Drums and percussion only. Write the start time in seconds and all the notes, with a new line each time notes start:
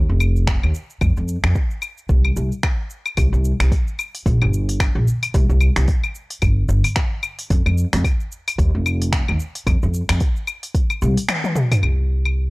0.20 claves, shaker
0.36 shaker
0.47 finger snap, kick, shaker
0.63 claves
0.74 shaker
0.90 shaker
1.01 kick, claves, shaker
1.17 shaker
1.28 shaker
1.44 finger snap, claves, shaker
1.55 kick, shaker
1.71 shaker
1.82 claves, shaker
1.98 shaker
2.09 kick, shaker
2.25 claves
2.36 shaker
2.52 shaker
2.63 finger snap, kick, claves, shaker
2.90 shaker
3.06 claves, shaker
3.17 kick, open hi-hat, claves, shaker
3.34 shaker
3.45 shaker
3.60 finger snap, open hi-hat, claves, shaker
3.72 kick, open hi-hat, shaker
3.88 shaker
3.99 claves, shaker
4.15 open hi-hat, shaker
4.26 kick, open hi-hat, shaker
4.42 claves
4.54 shaker
4.69 open hi-hat, shaker
4.80 finger snap, kick, open hi-hat, claves, shaker
5.07 shaker
5.23 open hi-hat, claves, shaker
5.34 kick, open hi-hat, shaker
5.50 shaker
5.61 claves, shaker
5.76 finger snap, open hi-hat, shaker
5.88 kick, open hi-hat, shaker
6.04 claves, shaker
6.15 shaker
6.30 open hi-hat, shaker
6.42 kick, open hi-hat, claves, shaker
6.69 shaker
6.84 open hi-hat, claves, shaker
6.96 finger snap, kick, open hi-hat, shaker
7.23 claves, shaker
7.39 open hi-hat, shaker
7.50 kick, open hi-hat, shaker
7.66 claves, shaker
7.78 shaker
7.93 finger snap, open hi-hat, shaker
8.04 kick, open hi-hat, claves, shaker
8.20 shaker
8.32 shaker
8.48 open hi-hat, claves, shaker
8.59 kick, open hi-hat, shaker
8.86 claves, shaker
9.02 open hi-hat, shaker
9.13 finger snap, kick, open hi-hat, shaker
9.28 claves
9.40 shaker
9.55 open hi-hat, shaker
9.67 kick, open hi-hat, claves, shaker
9.83 shaker
9.94 shaker
10.09 finger snap, open hi-hat, claves, shaker
10.20 kick, open hi-hat, shaker
10.36 shaker
10.47 claves, shaker
10.63 open hi-hat, shaker
10.75 kick, open hi-hat, shaker
10.90 claves, shaker
11.02 shaker
11.17 open hi-hat, shaker
11.28 finger snap, open hi-hat, high tom, claves, shaker
11.44 high tom, shaker
11.56 mid tom, shaker
11.72 mid tom, open hi-hat, claves, shaker
11.83 claves
12.25 claves